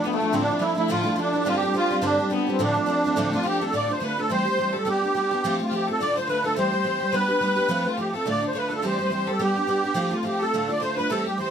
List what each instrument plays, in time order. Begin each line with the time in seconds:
Already playing: hammered dulcimer D4 F4 G4
0.04 twelve-string acoustic guitar F3 A3 D4 E4, fiddle B3, accordion B3, hammered dulcimer B3
0.13 hammered dulcimer A3, accordion A3, fiddle A3
0.20 twelve-string acoustic guitar F3 A3 D4 E4
0.33 twelve-string acoustic guitar D2 A2 F3 A3 D4 E4, accordion C4, fiddle C4, hammered dulcimer C4
0.41 fiddle D4, hammered dulcimer D4, accordion D4
0.49 twelve-string acoustic guitar F3 A3 D4 E4
0.59 twelve-string acoustic guitar F3 A3 D4 E4, fiddle E4, hammered dulcimer E4, accordion E4
0.75 twelve-string acoustic guitar F3 A3 D4 E4, accordion E4, hammered dulcimer E4, fiddle E4
0.88 twelve-string acoustic guitar D2 A2 F3 A3 D4 E4, hammered dulcimer F4, accordion F4, fiddle F4
1.03 twelve-string acoustic guitar F3 A3 D4 E4
1.16 twelve-string acoustic guitar F3 A3 D4 E4, hammered dulcimer D4, fiddle D4
1.20 accordion D4
1.33 twelve-string acoustic guitar F3 A3 D4 E4
1.45 twelve-string acoustic guitar G2 D3 G3 C4 D4 G4, hammered dulcimer F4, fiddle F4, accordion F4
1.55 hammered dulcimer G4, accordion G4, fiddle G4
1.62 twelve-string acoustic guitar G3 C4 D4 G4
1.73 twelve-string acoustic guitar G3 C4 D4 G4, hammered dulcimer F4, accordion F4
1.77 fiddle F4
1.90 twelve-string acoustic guitar G3 C4 D4 G4
2.01 twelve-string acoustic guitar G2 D3 G3 C4 D4 G4, hammered dulcimer D4, fiddle D4, accordion D4
2.18 twelve-string acoustic guitar G3 C4 D4 G4
2.30 twelve-string acoustic guitar G3 C4 D4 G4, hammered dulcimer B3, fiddle B3, accordion B3
2.47 twelve-string acoustic guitar G3 C4 D4 G4, hammered dulcimer C4
2.52 accordion C4
2.59 twelve-string acoustic guitar D2 A2 F3 A3 C4 D4, fiddle D4, hammered dulcimer D4
2.64 accordion D4
2.74 twelve-string acoustic guitar F3 A3 C4 D4
2.86 twelve-string acoustic guitar F3 A3 C4 D4
3.04 twelve-string acoustic guitar F3 A3 C4 D4
3.16 twelve-string acoustic guitar D2 A2 F3 A3 C4 D4
3.32 twelve-string acoustic guitar F3 A3 C4 D4, fiddle F4, accordion F4
3.43 twelve-string acoustic guitar F3 A3 C4, fiddle G4, accordion G4
3.47 twelve-string acoustic guitar D4
3.61 twelve-string acoustic guitar F3 A3 C4 D4, fiddle A4
3.65 accordion A4
3.73 twelve-string acoustic guitar D2 A2 D3 A3 D4 F4, fiddle D5, accordion D5
3.88 twelve-string acoustic guitar D3 A3 D4 F4, accordion C5
4.00 twelve-string acoustic guitar D3 A3 D4 F4, fiddle B4
4.05 accordion B4
4.17 twelve-string acoustic guitar D3 A3 D4 F4, fiddle A4, accordion A4
4.27 twelve-string acoustic guitar E3 G3, fiddle C5
4.31 twelve-string acoustic guitar C4 G4, accordion C5
4.45 twelve-string acoustic guitar G3 C4 G4
4.57 twelve-string acoustic guitar E3 G3 C4 G4
4.72 twelve-string acoustic guitar C4 G4, fiddle A4
4.77 twelve-string acoustic guitar G3, accordion A4
4.85 twelve-string acoustic guitar G3 B3 D4 G4, fiddle G4
4.90 accordion G4
5.02 twelve-string acoustic guitar B3 D4 G4
5.15 twelve-string acoustic guitar G3 B3 D4 G4
5.31 twelve-string acoustic guitar B3 D4 G4
5.43 twelve-string acoustic guitar F3 A3 C4 F4, fiddle G4
5.59 twelve-string acoustic guitar A3 C4 F4
5.63 accordion F4
5.69 twelve-string acoustic guitar F3 C4, fiddle G4
5.74 twelve-string acoustic guitar A3 F4, accordion G4
5.87 twelve-string acoustic guitar A3 F4, fiddle A4
5.91 twelve-string acoustic guitar C4, accordion A4
5.99 twelve-string acoustic guitar D2 A2 D3 A3 D4 F4, fiddle D5, accordion D5
6.15 twelve-string acoustic guitar A3 D4 F4, fiddle C5, accordion C5
6.19 twelve-string acoustic guitar D3
6.27 twelve-string acoustic guitar D3 A3 D4 F4, fiddle B4, accordion B4
6.44 twelve-string acoustic guitar D3 A3 D4 F4, fiddle A4, accordion A4
6.55 twelve-string acoustic guitar E3 G3 C4 G4, fiddle C5, accordion C5
6.72 twelve-string acoustic guitar G3 C4 G4
6.84 twelve-string acoustic guitar E3 G3 C4 G4
7.00 twelve-string acoustic guitar G3 C4 G4
7.04 accordion C5
7.12 twelve-string acoustic guitar G3 B3 D4 G4, fiddle B4, accordion B4
7.28 twelve-string acoustic guitar B3 D4 G4
7.41 twelve-string acoustic guitar G3 B3 D4 G4
7.56 twelve-string acoustic guitar B3 D4 G4
7.69 twelve-string acoustic guitar F3 A3 C4 F4
7.85 twelve-string acoustic guitar A3 C4 F4, fiddle F4
7.89 accordion F4
7.97 twelve-string acoustic guitar F3 A3 C4 F4, fiddle G4, accordion G4
8.12 twelve-string acoustic guitar A3 F4, fiddle A4
8.17 twelve-string acoustic guitar C4, accordion A4
8.25 twelve-string acoustic guitar D2 A2 D3 A3 D4 F4, fiddle D5
8.30 accordion D5
8.41 twelve-string acoustic guitar D3 A3 D4 F4
8.47 accordion C5
8.53 twelve-string acoustic guitar D3 A3 D4 F4, fiddle B4
8.58 accordion B4
8.68 twelve-string acoustic guitar A3 D4 F4, fiddle A4
8.73 twelve-string acoustic guitar D3, accordion A4
8.82 twelve-string acoustic guitar E3 G3 C4 G4, fiddle C5
8.86 accordion C5
8.93 fiddle D5
8.99 twelve-string acoustic guitar G3 C4 G4, fiddle C5
9.06 twelve-string acoustic guitar E3, fiddle B4
9.11 twelve-string acoustic guitar G3 C4 G4, fiddle C5
9.27 twelve-string acoustic guitar G3 C4 G4, fiddle A4
9.31 accordion A4
9.39 twelve-string acoustic guitar G3 B3 D4 G4, fiddle G4, accordion G4
9.56 twelve-string acoustic guitar B3 D4 G4
9.67 twelve-string acoustic guitar G3 B3 D4 G4
9.84 twelve-string acoustic guitar B3 D4 G4
9.94 twelve-string acoustic guitar F3 A3 C4 F4, fiddle G4
10.11 twelve-string acoustic guitar A3 C4 F4, fiddle F4, accordion F4
10.23 twelve-string acoustic guitar F3 A3 C4 F4, fiddle G4
10.27 accordion G4
10.39 twelve-string acoustic guitar A3 F4, fiddle A4, accordion A4
10.44 twelve-string acoustic guitar C4
10.53 twelve-string acoustic guitar D2 A2 D3 A3 D4 F4
10.68 twelve-string acoustic guitar D4 F4, fiddle D5
10.72 twelve-string acoustic guitar D3 A3, accordion D5
10.80 twelve-string acoustic guitar D3 A3 D4 F4, fiddle C5, accordion C5
10.96 twelve-string acoustic guitar A3 D4 F4, fiddle B4, accordion B4
11.01 twelve-string acoustic guitar D3
11.10 twelve-string acoustic guitar E3 G3 C4 G4, fiddle A4, accordion A4
11.26 twelve-string acoustic guitar G3 C4 G4, fiddle G4, accordion G4
11.38 twelve-string acoustic guitar E3 G3 C4 G4, accordion C5, fiddle C5